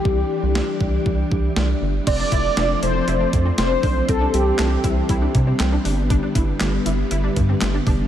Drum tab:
CC |--------|x-------|--------|--------|
HH |--------|xxxxxxxo|xxxxxxxo|xxxxxxxo|
CP |--------|--------|--x---x-|--x---x-|
SD |--o---o-|--o---o-|--o---o-|--o---o-|
BD |o--ooo--|oo---o-o|o--ooo--|oo---o-o|